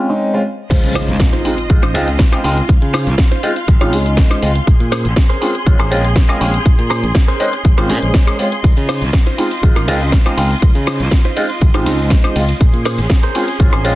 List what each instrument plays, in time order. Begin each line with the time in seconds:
0.09 grand piano G#3 C4 C#4 D#4
0.34 grand piano G#3 C4 C#4 F4
0.70 fingered electric bass C#2, grand piano G#3 D#4 F4 C5, string section F4 D#5 C6, kick, closed hi-hat, crash, impact, shaker
0.84 fingered electric bass C#3, closed hi-hat, shaker
0.95 clean electric guitar C#4 D#4 F4 C5, open hi-hat, high woodblock, shaker
1.08 fingered electric bass C#2, closed hi-hat, shaker
1.20 kick, snare, closed hi-hat, shaker
1.33 clean electric guitar C#4 D#4 F4 C5, closed hi-hat, shaker
1.44 grand piano G#3 C4 D#4 F4, open hi-hat, shaker
1.58 closed hi-hat, shaker
1.69 fingered electric bass G#1, grand piano G#3 C4 D#4 F4, kick, closed hi-hat, shaker
1.83 clean electric guitar C#4 D#4 F4 C5, closed hi-hat, high woodblock, shaker
1.94 fingered electric bass C#2, grand piano G#3 C4 D#4 F4, open hi-hat, shaker
2.08 closed hi-hat, shaker
2.19 kick, snare, closed hi-hat, shaker
2.32 grand piano G#3 C4 D#4 F4, clean electric guitar C#4 D#4 F4 C5, closed hi-hat, high woodblock, shaker
2.44 fingered electric bass C#2, grand piano G#3 C4 D#4 F4, open hi-hat, shaker
2.57 muted clean electric guitar stroke, closed hi-hat, shaker
2.69 fingered electric bass C#2, string section F5, kick, closed hi-hat, shaker
2.82 fingered electric bass C#3, closed hi-hat, shaker
2.94 clean electric guitar C#4 D#4 F4 C5, open hi-hat, high woodblock, shaker
3.07 fingered electric bass C#2, closed hi-hat, shaker
3.18 kick, snare, closed hi-hat, shaker
3.31 clean electric guitar C#4 D#4 F4 C5, closed hi-hat, shaker
3.43 grand piano G#3 C4 D#4 F4, open hi-hat, shaker
3.56 closed hi-hat, shaker
3.68 fingered electric bass G#1, kick, closed hi-hat, shaker
3.81 grand piano G#3 C4 D#4 F4, clean electric guitar C#4 D#4 F4 C#5, closed hi-hat, high woodblock, shaker
3.93 fingered electric bass C#2, grand piano G#3 D#4 G#4, open hi-hat, shaker
4.06 closed hi-hat, shaker
4.17 kick, snare, closed hi-hat, shaker
4.30 clean electric guitar C#4 D#4 F4 C5, closed hi-hat, high woodblock, shaker
4.42 fingered electric bass C#2, grand piano G#3 C4 D#4 F4, open hi-hat, shaker
4.55 muted clean electric guitar stroke, closed hi-hat, shaker
4.67 fingered electric bass A#1, string section G#4, kick, closed hi-hat, shaker
4.80 fingered electric bass A#2, closed hi-hat, shaker
4.92 clean electric guitar C#4 G#4 A#4 C5, open hi-hat, high woodblock, shaker
5.05 fingered electric bass A#1, closed hi-hat, shaker
5.16 kick, snare, closed hi-hat, shaker
5.29 clean electric guitar C#4 G#4 A#4 C5, closed hi-hat, shaker
5.41 grand piano G#3 C4 C#4 F4, open hi-hat, shaker
5.55 closed hi-hat, shaker
5.66 fingered electric bass G#1, grand piano G#3 C4 C#4 F4, kick, closed hi-hat, shaker
5.79 clean electric guitar C#4 G#4 A#4 C5, closed hi-hat, high woodblock, shaker
5.91 fingered electric bass A#1, grand piano G#3 C4 C#4 F4, open hi-hat, shaker
6.05 closed hi-hat, shaker
6.16 kick, snare, closed hi-hat, shaker
6.28 grand piano G#3 C4 C#4 F4, clean electric guitar C#4 G#4 A#4 D#5, closed hi-hat, high woodblock, shaker
6.40 fingered electric bass A#1, grand piano G#3 C4 C#4 F4, open hi-hat, shaker
6.53 muted clean electric guitar stroke, closed hi-hat, shaker
6.66 fingered electric bass A#1, kick, closed hi-hat, shaker
6.79 fingered electric bass A#2, closed hi-hat, shaker
6.90 clean electric guitar C#4 G#4 A#4 C5, open hi-hat, high woodblock, shaker
7.03 fingered electric bass A#1, closed hi-hat, shaker
7.15 muted clean electric guitar stroke, kick, snare, closed hi-hat, shaker
7.28 clean electric guitar C#4 G#4 A#4 C5, closed hi-hat, shaker
7.40 grand piano G#3 C4 C#4 D#4, open hi-hat, shaker
7.53 closed hi-hat, shaker
7.65 fingered electric bass G#1, kick, closed hi-hat, shaker
7.77 grand piano G#3 C4 C#4 F4, clean electric guitar C#4 G#4 A#4 C5, closed hi-hat, high woodblock, shaker
7.89 fingered electric bass A#2, grand piano G#3 C#4 G#4 C5, open hi-hat, shaker
8.03 fingered electric bass A#1, closed hi-hat, shaker
8.14 kick, snare, closed hi-hat, shaker
8.27 clean electric guitar C#4 G#4 A#4 C5, closed hi-hat, high woodblock, shaker
8.39 grand piano G#3 C4 C#4 F4, open hi-hat, shaker
8.52 muted clean electric guitar stroke, closed hi-hat, shaker
8.64 fingered electric bass C#2, string section F4 D#5, kick, closed hi-hat, ride, shaker
8.77 fingered electric bass C#3, closed hi-hat, shaker
8.89 clean electric guitar C#4 D#4 F4 C5, open hi-hat, ride, high woodblock, shaker
9.02 fingered electric bass C#2, closed hi-hat, shaker
9.13 kick, snare, closed hi-hat, ride, shaker
9.26 clean electric guitar C#4 D#4 F4 C5, closed hi-hat, shaker
9.38 grand piano G#3 C4 D#4 F4, open hi-hat, ride, shaker
9.51 closed hi-hat, shaker
9.63 fingered electric bass G#1, grand piano G#3 C4 D#4 F4, kick, closed hi-hat, ride, shaker
9.76 clean electric guitar C#4 D#4 F4 A#4, closed hi-hat, high woodblock, shaker
9.88 fingered electric bass C#2, grand piano G#3 C4 D#4 F4, open hi-hat, ride, shaker
10.01 closed hi-hat, shaker
10.12 kick, snare, closed hi-hat, ride, shaker
10.26 grand piano G#3 C4 D#4 F4, clean electric guitar C#4 D#4 F4 C5, closed hi-hat, high woodblock, shaker
10.37 fingered electric bass C#2, grand piano G#3 C4 D#4 F4, open hi-hat, ride, shaker
10.50 muted clean electric guitar stroke, closed hi-hat, shaker
10.62 fingered electric bass C#2, kick, closed hi-hat, ride, shaker
10.75 fingered electric bass C#3, closed hi-hat, shaker
10.87 clean electric guitar C#4 D#4 F4 C5, open hi-hat, ride, high woodblock, shaker
11.00 fingered electric bass C#2, closed hi-hat, shaker
11.11 kick, snare, closed hi-hat, ride, shaker
11.25 clean electric guitar C#4 D#4 F4 C5, closed hi-hat, shaker
11.36 grand piano G#3 C4 D#4 F4, open hi-hat, ride, shaker
11.50 closed hi-hat, shaker
11.61 fingered electric bass G#1, kick, closed hi-hat, ride, shaker
11.74 grand piano G#3 C4 D#4 F4, clean electric guitar C#4 D#4 F4 C5, closed hi-hat, high woodblock, shaker
11.86 fingered electric bass C#2, grand piano G#3 D#4 G#4 C5, open hi-hat, ride, shaker
11.99 closed hi-hat, shaker
12.10 kick, snare, closed hi-hat, ride, shaker
12.24 clean electric guitar C#4 D#4 F4 C5, closed hi-hat, high woodblock, shaker
12.35 fingered electric bass C#2, grand piano G#3 C4 D#4 F4, open hi-hat, ride, shaker
12.49 muted clean electric guitar stroke, closed hi-hat, shaker
12.61 fingered electric bass A#1, string section C#4 G#4 C6, kick, closed hi-hat, ride, shaker
12.73 fingered electric bass A#2, closed hi-hat, shaker
12.85 clean electric guitar C#4 G#4 A#4 C5, open hi-hat, ride, high woodblock, shaker
12.98 fingered electric bass A#1, closed hi-hat, shaker
13.10 kick, snare, closed hi-hat, ride, shaker
13.23 clean electric guitar C#4 G#4 A#4 C5, closed hi-hat, shaker
13.35 grand piano G#3 C4 C#4 F4, open hi-hat, ride, shaker
13.48 closed hi-hat, shaker
13.59 fingered electric bass G#1, grand piano G#3 C4 C#4 F4, kick, closed hi-hat, ride, shaker
13.73 clean electric guitar C#4 G#4 A#4 C5, closed hi-hat, high woodblock, shaker
13.84 fingered electric bass A#1, grand piano G#3 C4 C#4 F4, open hi-hat, ride, shaker